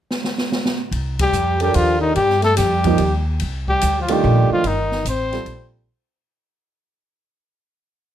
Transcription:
0.11 snare medium
0.24 snare medium
0.38 snare medium
0.52 snare medium
0.65 snare medium
0.91 1.32 C2 medium
0.91 ride soft
1.19 1.59 G3 medium
1.19 1.59 G4 medium
1.19 kick medium
1.19 ride medium
1.32 1.73 F2 medium
1.32 hi-hat pedal soft
1.60 1.74 G3 medium
1.60 2.14 D4 soft
1.60 2.14 G4 soft
1.60 1.77 G4 medium
1.60 2.14 A4 medium
1.60 2.15 A#4 medium
1.60 ride soft
1.73 2.15 D#2 medium
1.73 1.98 F3 medium
1.73 2.00 F4 medium
1.73 ride soft
1.99 2.13 D#3 medium
1.99 2.15 D#4 medium
2.14 2.56 G2 medium
2.14 2.40 G3 medium
2.14 2.41 G4 medium
2.14 ride soft
2.30 snare soft
2.41 2.55 A3 medium
2.41 2.56 A4 medium
2.41 snare soft
2.41 ride soft
2.56 2.98 F2 medium
2.56 3.21 G3 medium
2.56 3.22 G4 medium
2.56 snare soft
2.56 hi-hat pedal soft
2.56 ride medium
2.84 2.98 F3 medium
2.84 2.98 A#3 medium
2.84 2.98 D#4 medium
2.84 2.99 G4 medium
2.84 kick soft
2.84 ride soft
2.98 3.39 D#2 medium
2.98 ride soft
3.40 3.81 C2 medium
3.40 ride soft
3.68 3.97 G3 medium
3.68 3.98 G4 medium
3.68 kick soft
3.81 4.22 D2 medium
3.81 hi-hat pedal medium
3.81 ride medium
4.00 4.10 F3 medium
4.00 4.14 F4 medium
4.08 4.61 D#3 medium
4.08 4.50 G3 medium
4.08 4.61 A3 medium
4.08 4.62 D4 medium
4.08 4.62 F4 medium
4.08 ride medium
4.12 4.52 G4 medium
4.24 4.48 A#1 medium
4.50 4.67 F3 medium
4.50 4.69 F4 medium
4.50 muted upright bass stroke soft
4.64 5.04 G1 medium
4.64 5.06 D#3 medium
4.64 5.07 D#4 medium
4.64 ride soft
4.91 snare soft
5.05 5.45 A1 medium
5.05 5.70 C4 medium
5.05 hi-hat pedal soft
5.05 ride medium
5.09 5.71 C5 medium
5.31 5.84 G3 medium
5.31 5.85 C4 soft
5.31 5.85 F4 soft
5.31 5.85 A4 medium
5.31 snare soft
5.31 ride soft
5.45 5.86 A#1 medium
5.45 ride soft

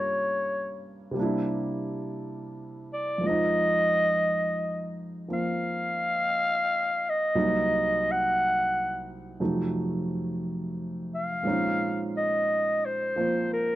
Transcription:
0.00 1.14 G2 soft
0.00 1.13 G3 soft
0.00 1.16 A#3 soft
0.00 1.17 C#4 soft
0.00 1.19 F4 medium
0.00 0.86 C#5 medium
1.11 3.21 C3 soft
1.11 3.22 G3 soft
1.17 3.24 A#3 soft
1.17 3.25 D4 soft
1.22 3.26 E4 soft
2.93 3.28 D5 medium
3.18 7.33 F2 soft
3.18 5.27 F3 soft
3.24 7.35 G#3 soft
3.24 5.30 C4 soft
3.24 4.99 D#5 loud
3.29 7.35 D#4 soft
5.28 7.35 F3 soft
5.28 7.34 A#3 soft
5.28 7.36 C4 soft
5.33 7.11 F5 loud
7.09 8.13 D#5 medium
7.35 9.40 C2 soft
7.35 9.39 C3 soft
7.35 9.39 F#3 soft
7.35 9.40 A#3 soft
7.35 9.40 D#4 medium
8.11 9.11 F#5 medium
9.40 11.44 F2 soft
9.40 11.44 C3 soft
9.40 11.45 F#3 soft
9.40 11.45 A3 soft
9.40 11.45 D#4 soft
11.15 12.10 F5 medium
11.43 13.76 A#2 soft
11.43 13.15 F3 soft
11.43 13.76 G#3 soft
11.43 13.18 C4 soft
11.47 13.76 C#4 soft
11.47 13.76 D#4 medium
12.17 12.87 D#5 medium
12.86 13.51 C5 medium
13.16 13.76 F3 soft
13.16 13.76 A#3 soft
13.16 13.76 C4 soft
13.53 13.76 A#4 medium

